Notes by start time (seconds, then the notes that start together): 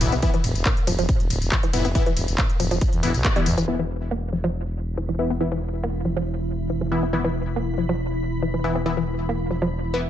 0.01 B1 E3 B3 E4, mid tom, open hi-hat, ride, tambourine
0.12 B1 B3, closed hi-hat, tambourine
0.23 E3 B3 E4, kick, closed hi-hat, mid tom, ride, tambourine
0.34 E3, closed hi-hat
0.44 E1, mid tom, open hi-hat, ride, tambourine
0.55 E1, closed hi-hat, tambourine
0.66 A#3, kick, clap, closed hi-hat, mid tom, ride, tambourine
0.77 closed hi-hat
0.87 E1 F3, mid tom, open hi-hat, ride, tambourine
0.99 E1 F3, closed hi-hat, tambourine
1.09 kick, closed hi-hat, mid tom, ride, tambourine
1.20 E1, closed hi-hat
1.30 D1, mid tom, open hi-hat, ride, tambourine
1.42 E1, closed hi-hat, tambourine
1.52 E3, kick, clap, closed hi-hat, mid tom, ride
1.63 E3, closed hi-hat
1.73 F1 E3 B3 E4, mid tom, open hi-hat, ride, tambourine
1.85 F1 B3, closed hi-hat, tambourine
1.95 E3 B3 E4, kick, closed hi-hat, mid tom, ride, tambourine
2.06 E3, closed hi-hat
2.17 E1, mid tom, open hi-hat, ride, tambourine
2.28 E1, closed hi-hat, tambourine
2.38 A#3, kick, clap, closed hi-hat, mid tom, ride, tambourine
2.50 closed hi-hat
2.60 E1 F3, mid tom, open hi-hat, ride, tambourine
2.71 E1 F3, closed hi-hat, tambourine
2.81 kick, closed hi-hat, mid tom, ride, tambourine
2.93 E2, closed hi-hat
3.03 E1 E3 B3 E4, mid tom, open hi-hat, ride, tambourine
3.14 B1, closed hi-hat, tambourine
3.25 A#3, kick, clap, closed hi-hat, mid tom, ride
3.36 E3 G3 B3 E4, closed hi-hat
3.46 E2, mid tom, open hi-hat, ride, tambourine
3.58 E1 E3, closed hi-hat, tambourine
3.68 E1 E3 B3 E4
3.79 E3
4.11 A#3
4.33 F3
4.44 F3
4.97 E3
5.09 E3
5.19 E3 B3 E4
5.30 B3
5.40 E3 B3 E4
5.52 E3
5.83 A#3
6.05 F3
6.17 F3
6.70 E3
6.81 E3
6.92 E3 B3 E4
7.03 B3
7.13 E3 B3 E4
7.24 E3
7.56 A#3
7.78 F3
7.89 F3
8.43 E3
8.54 E3
8.64 E3 B3 E4
8.76 B3
8.86 E3 B3 E4
8.97 E3
9.29 A#3
9.51 F3
9.62 F3
9.94 E3 B3 E4